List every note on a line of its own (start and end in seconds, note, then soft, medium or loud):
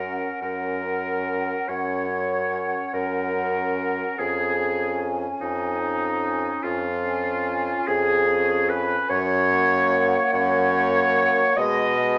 0.00 0.27 F#2 medium
0.00 0.82 C#4 soft
0.00 0.41 A#4 medium
0.00 0.82 F#5 soft
0.42 1.54 F#2 medium
0.42 1.70 A#4 medium
0.84 2.08 C#4 soft
0.84 2.07 F#5 soft
1.68 2.79 F#2 medium
1.68 2.93 C#5 medium
1.68 2.95 C#5 medium
2.09 3.33 C#4 soft
2.09 3.33 F#5 medium
2.93 4.04 F#2 medium
2.93 4.20 A#4 medium
2.93 4.17 A#4 medium
3.35 4.17 C#4 soft
3.35 4.17 F#5 soft
4.18 5.26 F2 medium
4.18 4.59 C#4 soft
4.18 5.11 G#4 medium
4.18 5.14 G#4 medium
4.18 4.58 G#5 soft
4.59 5.79 C#4 medium
4.59 5.79 G#5 medium
5.40 6.49 F2 medium
5.40 6.65 D#4 medium
5.81 6.88 C#4 medium
5.81 6.81 G#5 medium
6.63 7.73 F2 medium
6.63 7.89 F4 medium
6.63 7.87 F4 medium
7.04 8.26 C#4 medium
7.04 8.26 G#5 medium
7.87 8.96 F2 medium
7.87 8.71 G#4 loud
7.87 8.71 G#4 medium
8.28 9.09 C#4 medium
8.28 9.08 G#5 medium
8.69 9.11 B4 loud
8.69 9.09 B4 medium
9.09 10.18 F#2 medium
9.09 10.30 C#5 loud
9.09 10.32 C#5 loud
9.51 10.71 A#3 medium
9.51 10.71 F#5 medium
10.33 11.42 F#2 medium
10.33 11.58 C#5 loud
10.73 11.55 A#3 medium
10.73 11.56 F#5 medium
11.57 12.18 B2 loud
11.57 11.98 G#3 medium
11.57 12.18 D#5 loud
11.57 12.18 D#5 medium
11.57 11.99 D#5 medium
11.99 12.18 G#3 medium
11.99 12.18 D#5 medium